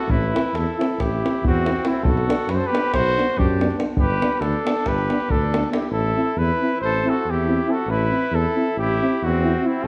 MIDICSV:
0, 0, Header, 1, 7, 480
1, 0, Start_track
1, 0, Tempo, 433526
1, 75, Time_signature, 9, 3, 24, 8
1, 10931, End_track
2, 0, Start_track
2, 0, Title_t, "Cornet"
2, 0, Program_c, 0, 56
2, 0, Note_on_c, 0, 69, 82
2, 113, Note_on_c, 0, 71, 84
2, 130, Note_off_c, 0, 69, 0
2, 607, Note_on_c, 0, 69, 75
2, 624, Note_off_c, 0, 71, 0
2, 1113, Note_on_c, 0, 67, 92
2, 1130, Note_off_c, 0, 69, 0
2, 1591, Note_off_c, 0, 67, 0
2, 1621, Note_on_c, 0, 66, 96
2, 2075, Note_on_c, 0, 64, 82
2, 2092, Note_off_c, 0, 66, 0
2, 2248, Note_on_c, 0, 69, 84
2, 2265, Note_off_c, 0, 64, 0
2, 2764, Note_on_c, 0, 71, 82
2, 2780, Note_off_c, 0, 69, 0
2, 2821, Note_on_c, 0, 72, 78
2, 2837, Note_off_c, 0, 71, 0
2, 2947, Note_on_c, 0, 71, 93
2, 2963, Note_off_c, 0, 72, 0
2, 3247, Note_off_c, 0, 71, 0
2, 3253, Note_on_c, 0, 72, 105
2, 3745, Note_on_c, 0, 67, 83
2, 3762, Note_off_c, 0, 72, 0
2, 4195, Note_off_c, 0, 67, 0
2, 4416, Note_on_c, 0, 71, 87
2, 4880, Note_on_c, 0, 69, 84
2, 4896, Note_off_c, 0, 71, 0
2, 5395, Note_on_c, 0, 71, 96
2, 5411, Note_off_c, 0, 69, 0
2, 5880, Note_on_c, 0, 69, 88
2, 5896, Note_off_c, 0, 71, 0
2, 6330, Note_off_c, 0, 69, 0
2, 6336, Note_on_c, 0, 67, 58
2, 6533, Note_off_c, 0, 67, 0
2, 6544, Note_on_c, 0, 69, 87
2, 7062, Note_on_c, 0, 71, 96
2, 7079, Note_off_c, 0, 69, 0
2, 7531, Note_off_c, 0, 71, 0
2, 7537, Note_on_c, 0, 72, 89
2, 7847, Note_on_c, 0, 69, 88
2, 7864, Note_off_c, 0, 72, 0
2, 8085, Note_on_c, 0, 67, 87
2, 8101, Note_off_c, 0, 69, 0
2, 8529, Note_on_c, 0, 69, 83
2, 8545, Note_off_c, 0, 67, 0
2, 8744, Note_on_c, 0, 71, 99
2, 8760, Note_off_c, 0, 69, 0
2, 9243, Note_on_c, 0, 69, 97
2, 9260, Note_off_c, 0, 71, 0
2, 9721, Note_off_c, 0, 69, 0
2, 9728, Note_on_c, 0, 67, 94
2, 10226, Note_on_c, 0, 66, 89
2, 10243, Note_off_c, 0, 67, 0
2, 10700, Note_on_c, 0, 64, 75
2, 10717, Note_off_c, 0, 66, 0
2, 10915, Note_off_c, 0, 64, 0
2, 10931, End_track
3, 0, Start_track
3, 0, Title_t, "Trombone"
3, 0, Program_c, 1, 57
3, 380, Note_on_c, 1, 64, 55
3, 462, Note_off_c, 1, 64, 0
3, 857, Note_on_c, 1, 64, 60
3, 943, Note_off_c, 1, 64, 0
3, 1372, Note_on_c, 1, 64, 59
3, 1455, Note_off_c, 1, 64, 0
3, 1830, Note_on_c, 1, 64, 60
3, 1911, Note_off_c, 1, 64, 0
3, 2040, Note_on_c, 1, 64, 55
3, 2121, Note_off_c, 1, 64, 0
3, 2533, Note_on_c, 1, 62, 66
3, 2617, Note_off_c, 1, 62, 0
3, 3025, Note_on_c, 1, 62, 49
3, 3110, Note_off_c, 1, 62, 0
3, 3513, Note_on_c, 1, 62, 48
3, 3600, Note_off_c, 1, 62, 0
3, 3983, Note_on_c, 1, 62, 53
3, 4065, Note_off_c, 1, 62, 0
3, 4188, Note_on_c, 1, 62, 48
3, 4271, Note_off_c, 1, 62, 0
3, 4675, Note_on_c, 1, 62, 59
3, 4762, Note_off_c, 1, 62, 0
3, 5170, Note_on_c, 1, 62, 51
3, 5258, Note_off_c, 1, 62, 0
3, 5659, Note_on_c, 1, 62, 49
3, 5748, Note_off_c, 1, 62, 0
3, 6133, Note_on_c, 1, 62, 50
3, 6217, Note_off_c, 1, 62, 0
3, 6329, Note_on_c, 1, 62, 41
3, 6415, Note_off_c, 1, 62, 0
3, 6826, Note_on_c, 1, 64, 53
3, 6915, Note_off_c, 1, 64, 0
3, 7327, Note_on_c, 1, 64, 44
3, 7414, Note_off_c, 1, 64, 0
3, 7814, Note_on_c, 1, 64, 55
3, 7904, Note_off_c, 1, 64, 0
3, 8273, Note_on_c, 1, 64, 58
3, 8361, Note_off_c, 1, 64, 0
3, 8488, Note_on_c, 1, 64, 57
3, 8574, Note_off_c, 1, 64, 0
3, 8975, Note_on_c, 1, 64, 64
3, 9065, Note_off_c, 1, 64, 0
3, 9473, Note_on_c, 1, 64, 46
3, 9564, Note_off_c, 1, 64, 0
3, 9978, Note_on_c, 1, 64, 52
3, 10067, Note_off_c, 1, 64, 0
3, 10457, Note_on_c, 1, 64, 59
3, 10540, Note_off_c, 1, 64, 0
3, 10666, Note_on_c, 1, 64, 53
3, 10749, Note_off_c, 1, 64, 0
3, 10931, End_track
4, 0, Start_track
4, 0, Title_t, "Trumpet"
4, 0, Program_c, 2, 56
4, 0, Note_on_c, 2, 66, 81
4, 115, Note_on_c, 2, 64, 97
4, 131, Note_off_c, 2, 66, 0
4, 636, Note_off_c, 2, 64, 0
4, 636, Note_on_c, 2, 64, 76
4, 1135, Note_off_c, 2, 64, 0
4, 1135, Note_on_c, 2, 64, 83
4, 1602, Note_off_c, 2, 64, 0
4, 1627, Note_on_c, 2, 60, 79
4, 2087, Note_off_c, 2, 60, 0
4, 2087, Note_on_c, 2, 60, 77
4, 2286, Note_on_c, 2, 66, 93
4, 2303, Note_off_c, 2, 60, 0
4, 2786, Note_off_c, 2, 66, 0
4, 2786, Note_on_c, 2, 66, 67
4, 2859, Note_on_c, 2, 69, 62
4, 2875, Note_off_c, 2, 66, 0
4, 2964, Note_on_c, 2, 67, 76
4, 2980, Note_off_c, 2, 69, 0
4, 3256, Note_off_c, 2, 67, 0
4, 3291, Note_on_c, 2, 66, 87
4, 3742, Note_on_c, 2, 62, 71
4, 3759, Note_off_c, 2, 66, 0
4, 4194, Note_off_c, 2, 62, 0
4, 4420, Note_on_c, 2, 67, 93
4, 4882, Note_on_c, 2, 62, 72
4, 4899, Note_off_c, 2, 67, 0
4, 5373, Note_on_c, 2, 67, 87
4, 5389, Note_off_c, 2, 62, 0
4, 5870, Note_on_c, 2, 62, 74
4, 5887, Note_off_c, 2, 67, 0
4, 6324, Note_off_c, 2, 62, 0
4, 6331, Note_on_c, 2, 64, 55
4, 6523, Note_off_c, 2, 64, 0
4, 6530, Note_on_c, 2, 64, 76
4, 7073, Note_off_c, 2, 64, 0
4, 7073, Note_on_c, 2, 64, 74
4, 7560, Note_off_c, 2, 64, 0
4, 7574, Note_on_c, 2, 69, 105
4, 7871, Note_on_c, 2, 66, 80
4, 7887, Note_off_c, 2, 69, 0
4, 8077, Note_on_c, 2, 64, 78
4, 8093, Note_off_c, 2, 66, 0
4, 8560, Note_on_c, 2, 66, 76
4, 8576, Note_off_c, 2, 64, 0
4, 8755, Note_on_c, 2, 64, 94
4, 8771, Note_off_c, 2, 66, 0
4, 9284, Note_off_c, 2, 64, 0
4, 9284, Note_on_c, 2, 64, 76
4, 9745, Note_off_c, 2, 64, 0
4, 9760, Note_on_c, 2, 64, 91
4, 10262, Note_on_c, 2, 60, 78
4, 10279, Note_off_c, 2, 64, 0
4, 10707, Note_off_c, 2, 60, 0
4, 10707, Note_on_c, 2, 60, 70
4, 10931, Note_off_c, 2, 60, 0
4, 10931, End_track
5, 0, Start_track
5, 0, Title_t, "Euphonium"
5, 0, Program_c, 3, 58
5, 383, Note_on_c, 3, 60, 56
5, 465, Note_off_c, 3, 60, 0
5, 882, Note_on_c, 3, 60, 66
5, 963, Note_off_c, 3, 60, 0
5, 1377, Note_on_c, 3, 60, 66
5, 1459, Note_off_c, 3, 60, 0
5, 1851, Note_on_c, 3, 60, 65
5, 1928, Note_off_c, 3, 60, 0
5, 2034, Note_on_c, 3, 60, 71
5, 2116, Note_off_c, 3, 60, 0
5, 2511, Note_on_c, 3, 59, 58
5, 2599, Note_off_c, 3, 59, 0
5, 3007, Note_on_c, 3, 59, 62
5, 3096, Note_off_c, 3, 59, 0
5, 3524, Note_on_c, 3, 59, 63
5, 3608, Note_off_c, 3, 59, 0
5, 3991, Note_on_c, 3, 59, 67
5, 4072, Note_off_c, 3, 59, 0
5, 4167, Note_on_c, 3, 59, 61
5, 4254, Note_off_c, 3, 59, 0
5, 4667, Note_on_c, 3, 59, 56
5, 4756, Note_off_c, 3, 59, 0
5, 5143, Note_on_c, 3, 59, 57
5, 5236, Note_off_c, 3, 59, 0
5, 5646, Note_on_c, 3, 59, 61
5, 5738, Note_off_c, 3, 59, 0
5, 6124, Note_on_c, 3, 59, 48
5, 6210, Note_off_c, 3, 59, 0
5, 6316, Note_on_c, 3, 59, 50
5, 6405, Note_off_c, 3, 59, 0
5, 6816, Note_on_c, 3, 60, 49
5, 6906, Note_off_c, 3, 60, 0
5, 7307, Note_on_c, 3, 60, 55
5, 7399, Note_off_c, 3, 60, 0
5, 7803, Note_on_c, 3, 60, 69
5, 7895, Note_off_c, 3, 60, 0
5, 8290, Note_on_c, 3, 60, 59
5, 8374, Note_off_c, 3, 60, 0
5, 8487, Note_on_c, 3, 60, 67
5, 8573, Note_off_c, 3, 60, 0
5, 8981, Note_on_c, 3, 60, 56
5, 9070, Note_off_c, 3, 60, 0
5, 9469, Note_on_c, 3, 60, 57
5, 9560, Note_off_c, 3, 60, 0
5, 9988, Note_on_c, 3, 60, 77
5, 10075, Note_off_c, 3, 60, 0
5, 10416, Note_on_c, 3, 60, 59
5, 10507, Note_off_c, 3, 60, 0
5, 10621, Note_on_c, 3, 60, 65
5, 10712, Note_off_c, 3, 60, 0
5, 10931, End_track
6, 0, Start_track
6, 0, Title_t, "Tuba"
6, 0, Program_c, 4, 58
6, 73, Note_on_c, 4, 33, 78
6, 348, Note_off_c, 4, 33, 0
6, 590, Note_on_c, 4, 40, 82
6, 741, Note_off_c, 4, 40, 0
6, 1089, Note_on_c, 4, 33, 71
6, 1359, Note_off_c, 4, 33, 0
6, 1579, Note_on_c, 4, 40, 83
6, 1942, Note_off_c, 4, 40, 0
6, 2253, Note_on_c, 4, 35, 84
6, 2522, Note_off_c, 4, 35, 0
6, 2744, Note_on_c, 4, 42, 85
6, 2896, Note_off_c, 4, 42, 0
6, 3254, Note_on_c, 4, 35, 78
6, 3522, Note_off_c, 4, 35, 0
6, 3738, Note_on_c, 4, 42, 89
6, 4101, Note_off_c, 4, 42, 0
6, 4390, Note_on_c, 4, 31, 88
6, 4665, Note_off_c, 4, 31, 0
6, 4876, Note_on_c, 4, 38, 87
6, 5036, Note_off_c, 4, 38, 0
6, 5375, Note_on_c, 4, 31, 80
6, 5654, Note_off_c, 4, 31, 0
6, 5861, Note_on_c, 4, 38, 74
6, 6234, Note_off_c, 4, 38, 0
6, 6537, Note_on_c, 4, 33, 85
6, 6816, Note_off_c, 4, 33, 0
6, 7045, Note_on_c, 4, 40, 99
6, 7202, Note_off_c, 4, 40, 0
6, 7534, Note_on_c, 4, 33, 74
6, 7812, Note_off_c, 4, 33, 0
6, 8031, Note_on_c, 4, 40, 75
6, 8401, Note_off_c, 4, 40, 0
6, 8707, Note_on_c, 4, 33, 85
6, 8982, Note_off_c, 4, 33, 0
6, 9203, Note_on_c, 4, 40, 94
6, 9360, Note_off_c, 4, 40, 0
6, 9702, Note_on_c, 4, 33, 80
6, 9977, Note_off_c, 4, 33, 0
6, 10214, Note_on_c, 4, 40, 92
6, 10578, Note_off_c, 4, 40, 0
6, 10889, Note_on_c, 4, 35, 98
6, 10931, Note_off_c, 4, 35, 0
6, 10931, End_track
7, 0, Start_track
7, 0, Title_t, "Davul"
7, 105, Note_on_c, 9, 43, 84
7, 216, Note_off_c, 9, 43, 0
7, 253, Note_on_c, 9, 37, 23
7, 364, Note_off_c, 9, 37, 0
7, 399, Note_on_c, 9, 37, 72
7, 510, Note_off_c, 9, 37, 0
7, 610, Note_on_c, 9, 37, 56
7, 721, Note_off_c, 9, 37, 0
7, 899, Note_on_c, 9, 37, 59
7, 1009, Note_off_c, 9, 37, 0
7, 1108, Note_on_c, 9, 37, 57
7, 1108, Note_on_c, 9, 43, 60
7, 1218, Note_off_c, 9, 37, 0
7, 1218, Note_off_c, 9, 43, 0
7, 1393, Note_on_c, 9, 37, 53
7, 1493, Note_off_c, 9, 37, 0
7, 1493, Note_on_c, 9, 37, 21
7, 1599, Note_on_c, 9, 43, 86
7, 1604, Note_off_c, 9, 37, 0
7, 1710, Note_off_c, 9, 43, 0
7, 1720, Note_on_c, 9, 37, 21
7, 1831, Note_off_c, 9, 37, 0
7, 1842, Note_on_c, 9, 37, 62
7, 1951, Note_off_c, 9, 37, 0
7, 1951, Note_on_c, 9, 37, 27
7, 2045, Note_off_c, 9, 37, 0
7, 2045, Note_on_c, 9, 37, 66
7, 2156, Note_off_c, 9, 37, 0
7, 2270, Note_on_c, 9, 43, 96
7, 2380, Note_off_c, 9, 43, 0
7, 2406, Note_on_c, 9, 37, 24
7, 2517, Note_off_c, 9, 37, 0
7, 2547, Note_on_c, 9, 37, 81
7, 2658, Note_off_c, 9, 37, 0
7, 2756, Note_on_c, 9, 37, 56
7, 2867, Note_off_c, 9, 37, 0
7, 3041, Note_on_c, 9, 37, 73
7, 3152, Note_off_c, 9, 37, 0
7, 3251, Note_on_c, 9, 37, 65
7, 3251, Note_on_c, 9, 43, 55
7, 3362, Note_off_c, 9, 37, 0
7, 3362, Note_off_c, 9, 43, 0
7, 3534, Note_on_c, 9, 37, 47
7, 3645, Note_off_c, 9, 37, 0
7, 3650, Note_on_c, 9, 37, 25
7, 3759, Note_on_c, 9, 43, 90
7, 3761, Note_off_c, 9, 37, 0
7, 3870, Note_off_c, 9, 43, 0
7, 3881, Note_on_c, 9, 37, 23
7, 3992, Note_off_c, 9, 37, 0
7, 4000, Note_on_c, 9, 37, 58
7, 4102, Note_off_c, 9, 37, 0
7, 4102, Note_on_c, 9, 37, 25
7, 4206, Note_off_c, 9, 37, 0
7, 4206, Note_on_c, 9, 37, 60
7, 4316, Note_off_c, 9, 37, 0
7, 4393, Note_on_c, 9, 43, 100
7, 4504, Note_off_c, 9, 43, 0
7, 4544, Note_on_c, 9, 37, 22
7, 4655, Note_off_c, 9, 37, 0
7, 4675, Note_on_c, 9, 37, 69
7, 4785, Note_off_c, 9, 37, 0
7, 4785, Note_on_c, 9, 37, 23
7, 4892, Note_off_c, 9, 37, 0
7, 4892, Note_on_c, 9, 37, 56
7, 5003, Note_off_c, 9, 37, 0
7, 5016, Note_on_c, 9, 37, 24
7, 5127, Note_off_c, 9, 37, 0
7, 5167, Note_on_c, 9, 37, 74
7, 5276, Note_off_c, 9, 37, 0
7, 5276, Note_on_c, 9, 37, 24
7, 5380, Note_off_c, 9, 37, 0
7, 5380, Note_on_c, 9, 37, 54
7, 5380, Note_on_c, 9, 43, 52
7, 5491, Note_off_c, 9, 37, 0
7, 5491, Note_off_c, 9, 43, 0
7, 5519, Note_on_c, 9, 37, 25
7, 5629, Note_off_c, 9, 37, 0
7, 5647, Note_on_c, 9, 37, 56
7, 5758, Note_off_c, 9, 37, 0
7, 5760, Note_on_c, 9, 37, 25
7, 5870, Note_off_c, 9, 37, 0
7, 5870, Note_on_c, 9, 43, 75
7, 5981, Note_off_c, 9, 43, 0
7, 6000, Note_on_c, 9, 37, 22
7, 6110, Note_off_c, 9, 37, 0
7, 6134, Note_on_c, 9, 37, 71
7, 6239, Note_off_c, 9, 37, 0
7, 6239, Note_on_c, 9, 37, 27
7, 6349, Note_off_c, 9, 37, 0
7, 6349, Note_on_c, 9, 37, 66
7, 6448, Note_off_c, 9, 37, 0
7, 6448, Note_on_c, 9, 37, 23
7, 6559, Note_off_c, 9, 37, 0
7, 10931, End_track
0, 0, End_of_file